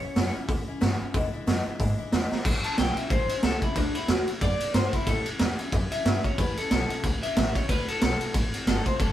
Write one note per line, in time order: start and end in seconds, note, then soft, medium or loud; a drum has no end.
0.00 0.15 G3 soft
0.00 0.15 C#4 soft
0.00 0.16 E4 medium
0.00 0.32 C#5 medium
0.00 muted upright bass stroke medium
0.16 0.35 F#2 medium
0.16 0.35 A2 medium
0.16 0.35 E3 medium
0.16 0.35 G3 medium
0.16 0.34 C#4 medium
0.16 0.33 E4 loud
0.16 snare loud
0.16 open hi-hat medium
0.34 0.48 G3 medium
0.34 0.49 C#4 medium
0.34 0.49 E4 medium
0.34 muted upright bass stroke medium
0.48 0.66 E2 medium
0.48 0.68 E3 medium
0.48 0.68 G3 medium
0.48 0.68 C#4 medium
0.48 0.66 E4 medium
0.48 kick loud
0.48 open hi-hat soft
0.67 0.80 G3 medium
0.67 0.80 C#4 medium
0.67 0.81 E4 medium
0.67 muted upright bass stroke soft
0.81 1.00 G2 medium
0.81 1.00 A2 medium
0.81 1.00 E3 loud
0.81 1.01 G3 loud
0.81 1.00 C#4 medium
0.81 0.99 E4 loud
0.81 snare loud
0.81 open hi-hat soft
1.00 1.14 G3 medium
1.00 1.15 C#4 medium
1.00 1.14 E4 medium
1.00 muted upright bass stroke medium
1.14 1.33 E2 medium
1.14 1.33 B2 medium
1.14 1.34 E3 medium
1.14 1.33 G#3 loud
1.14 1.33 D4 medium
1.14 1.32 E4 medium
1.14 kick loud
1.14 open hi-hat medium
1.33 1.46 E3 soft
1.33 1.47 G#3 medium
1.33 1.47 D4 medium
1.33 1.47 E4 medium
1.33 muted upright bass stroke medium
1.47 1.66 E2 medium
1.47 1.66 F#2 medium
1.47 1.66 B2 loud
1.47 1.66 E3 medium
1.47 1.66 G#3 loud
1.47 1.66 D4 medium
1.47 1.65 E4 loud
1.47 snare loud
1.47 open hi-hat medium
1.66 1.78 E3 medium
1.66 1.79 G#3 medium
1.66 1.80 D4 medium
1.66 1.80 E4 medium
1.66 muted upright bass stroke medium
1.80 1.98 G#2 medium
1.80 1.99 E3 medium
1.80 1.98 G#3 medium
1.80 1.98 D4 medium
1.80 1.97 E4 medium
1.80 kick loud
1.80 open hi-hat medium
1.98 2.12 E3 medium
1.98 2.12 G#3 medium
1.98 2.13 D4 medium
1.98 2.12 E4 medium
1.98 muted upright bass stroke medium
2.12 2.32 E2 medium
2.12 2.31 E2 medium
2.12 2.32 B2 medium
2.12 2.31 E3 medium
2.12 2.31 G#3 medium
2.12 2.30 D4 medium
2.12 2.30 E4 loud
2.12 snare loud
2.12 open hi-hat medium
2.31 2.44 E3 medium
2.31 2.45 G#3 medium
2.31 2.45 D4 medium
2.31 2.45 E4 medium
2.31 muted upright bass stroke medium
2.31 snare medium
2.45 2.64 A1 medium
2.45 2.64 A2 medium
2.45 2.64 E3 loud
2.45 2.65 G3 medium
2.45 2.64 C#4 medium
2.45 2.63 E4 medium
2.45 kick loud
2.45 crash loud
2.64 2.77 G3 soft
2.64 2.78 C#4 soft
2.64 2.78 E4 medium
2.64 2.78 A5 medium
2.64 ride medium
2.78 2.96 B1 loud
2.78 2.97 A2 medium
2.78 2.98 E3 medium
2.78 2.98 G3 medium
2.78 2.97 C#4 medium
2.78 2.96 E4 medium
2.78 2.97 G5 medium
2.78 snare loud
2.78 ride medium
2.97 3.11 G3 soft
2.97 3.11 C#4 medium
2.97 3.11 E4 medium
2.97 3.11 E5 medium
2.97 muted upright bass stroke medium
2.97 ride medium
3.10 3.29 A1 medium
3.10 3.30 E3 medium
3.10 3.31 G3 medium
3.10 3.30 C#4 medium
3.10 3.29 E4 medium
3.10 3.43 C5 loud
3.10 kick loud
3.10 ride medium
3.29 3.43 G3 soft
3.29 3.43 C#4 medium
3.29 3.43 E4 medium
3.29 muted upright bass stroke medium
3.29 ride medium
3.43 3.61 C#2 loud
3.43 3.62 A2 medium
3.43 3.63 E3 medium
3.43 3.62 G3 medium
3.43 3.62 C#4 medium
3.43 3.61 E4 medium
3.43 3.62 A4 medium
3.43 snare loud
3.43 ride medium
3.62 3.76 G3 soft
3.62 3.76 C#4 medium
3.62 3.76 E4 medium
3.62 muted upright bass stroke medium
3.62 kick medium
3.62 ride medium
3.75 3.95 D2 medium
3.75 3.95 D3 medium
3.75 3.95 A3 medium
3.75 3.95 C4 medium
3.75 3.95 D4 medium
3.75 3.94 F#4 medium
3.75 kick loud
3.75 ride medium
3.95 4.08 A3 soft
3.95 4.08 C4 medium
3.95 4.09 E4 medium
3.95 4.09 F#4 medium
3.95 muted upright bass stroke medium
3.95 ride medium
4.08 4.27 E2 loud
4.08 4.28 D3 medium
4.08 4.28 A3 medium
4.08 4.27 C4 medium
4.08 4.28 F#4 loud
4.08 4.26 F#4 medium
4.08 snare loud
4.08 ride medium
4.27 4.41 A3 soft
4.27 4.41 C4 medium
4.27 4.41 F#4 medium
4.27 muted upright bass stroke medium
4.27 ride medium
4.41 4.60 F#2 medium
4.41 4.61 D3 medium
4.41 4.61 A3 medium
4.41 4.60 C4 medium
4.41 4.59 F#4 medium
4.41 4.74 D5 loud
4.41 kick loud
4.41 ride medium
4.60 4.74 A3 soft
4.60 4.74 C4 medium
4.60 4.74 F#4 medium
4.60 muted upright bass stroke medium
4.60 ride medium
4.74 4.93 G2 loud
4.74 4.94 D3 medium
4.74 4.94 A3 medium
4.74 4.94 C4 medium
4.74 4.92 F#4 medium
4.74 4.93 C5 medium
4.74 snare loud
4.74 ride medium
4.93 5.08 A3 medium
4.93 5.08 C4 soft
4.93 5.07 E4 loud
4.93 5.07 F#4 medium
4.93 muted upright bass stroke medium
4.93 kick medium
4.93 ride medium
5.07 5.26 A2 medium
5.07 5.27 A2 medium
5.07 5.27 E3 medium
5.07 5.27 G3 medium
5.07 5.27 C#4 loud
5.07 5.26 E4 medium
5.07 5.26 A4 loud
5.07 kick loud
5.07 ride medium
5.26 5.40 G3 soft
5.26 5.41 C#4 medium
5.26 5.41 E4 medium
5.26 muted upright bass stroke medium
5.26 ride medium
5.39 5.59 E2 loud
5.39 5.60 A2 loud
5.39 5.60 E3 medium
5.39 5.60 G3 medium
5.39 5.60 C#4 medium
5.39 5.59 E4 loud
5.39 snare loud
5.39 ride medium
5.59 5.73 G3 medium
5.59 5.74 C#4 medium
5.59 5.73 E4 medium
5.59 muted upright bass stroke medium
5.59 ride medium
5.72 5.91 F#2 medium
5.72 5.92 E3 medium
5.72 5.93 G3 medium
5.72 5.92 C#4 medium
5.72 5.91 E4 medium
5.72 kick loud
5.72 ride medium
5.91 6.05 G3 soft
5.91 6.06 C#4 medium
5.91 6.06 E4 medium
5.91 6.24 E5 loud
5.91 muted upright bass stroke medium
5.91 ride medium
6.05 6.24 G2 medium
6.05 6.25 A2 medium
6.05 6.25 E3 medium
6.05 6.25 G3 medium
6.05 6.24 C#4 medium
6.05 6.23 E4 loud
6.05 snare loud
6.05 ride medium
6.24 6.38 C#4 soft
6.24 6.38 E4 medium
6.24 6.39 C#5 medium
6.24 kick medium
6.24 ride medium
6.38 6.56 E2 medium
6.38 6.58 A2 medium
6.38 6.58 E3 medium
6.38 6.58 G3 medium
6.38 6.58 C#4 medium
6.38 6.57 E4 medium
6.38 6.57 B4 medium
6.38 kick loud
6.38 ride medium
6.57 6.71 G3 soft
6.57 6.71 C#4 medium
6.57 6.71 E4 medium
6.57 6.71 A4 medium
6.57 muted upright bass stroke medium
6.57 ride medium
6.71 6.90 B1 loud
6.71 6.90 A2 medium
6.71 6.91 E3 medium
6.71 6.91 G3 medium
6.71 6.90 C#4 medium
6.71 6.89 E4 loud
6.71 7.03 A4 medium
6.71 snare loud
6.71 ride medium
6.90 7.03 G3 soft
6.90 7.04 C#4 medium
6.90 7.04 E4 medium
6.90 muted upright bass stroke medium
6.90 ride medium
7.04 7.22 C#2 medium
7.04 7.23 E3 medium
7.04 7.23 G3 medium
7.04 7.23 C#4 medium
7.04 7.22 E4 medium
7.04 kick loud
7.04 ride medium
7.23 7.36 G3 soft
7.23 7.37 C#4 medium
7.23 7.37 E4 medium
7.23 7.55 E5 loud
7.23 ride medium
7.36 7.55 A1 medium
7.36 7.56 A2 medium
7.36 7.56 E3 medium
7.36 7.56 G3 medium
7.36 7.55 C#4 medium
7.36 7.54 E4 medium
7.36 snare loud
7.36 ride medium
7.55 7.69 G3 soft
7.55 7.69 C#4 medium
7.55 7.69 E4 medium
7.55 7.69 C#5 medium
7.55 kick medium
7.55 ride medium
7.69 7.87 D2 medium
7.69 7.88 D3 medium
7.69 7.88 A3 medium
7.69 7.88 C4 medium
7.69 7.87 F#4 medium
7.69 7.88 B4 medium
7.69 kick loud
7.69 ride loud
7.88 8.01 A3 soft
7.88 8.01 C4 soft
7.88 8.01 F#4 medium
7.88 8.01 A4 loud
7.88 muted upright bass stroke medium
7.88 ride medium
8.01 8.20 B1 loud
8.01 8.21 D3 medium
8.01 8.21 A3 medium
8.01 8.20 C4 medium
8.01 8.19 F#4 medium
8.01 8.34 A4 loud
8.01 snare loud
8.01 ride loud
8.21 8.33 A3 soft
8.21 8.34 C4 medium
8.21 8.35 F#4 medium
8.21 muted upright bass stroke medium
8.21 ride medium
8.34 8.53 A1 medium
8.34 8.53 D3 medium
8.34 8.54 A3 medium
8.34 8.53 C4 medium
8.34 8.52 F#4 medium
8.34 kick loud
8.34 ride medium
8.53 8.66 A3 medium
8.53 8.67 C4 medium
8.53 8.67 F#4 medium
8.53 muted upright bass stroke medium
8.53 ride medium
8.66 8.85 G1 loud
8.66 8.86 D3 medium
8.66 8.87 A3 medium
8.66 8.86 C4 medium
8.66 8.85 F#4 medium
8.66 8.86 A4 loud
8.66 snare loud
8.66 ride medium
8.86 8.98 A3 soft
8.86 8.99 C4 medium
8.86 8.99 F#4 medium
8.86 9.00 C5 medium
8.86 muted upright bass stroke medium
8.86 kick medium
8.86 ride medium
8.99 9.12 F#1 medium
8.99 9.12 D3 medium
8.99 9.12 A3 medium
8.99 9.12 C4 medium
8.99 9.12 F#4 medium
8.99 9.12 A4 medium
8.99 kick loud
8.99 ride medium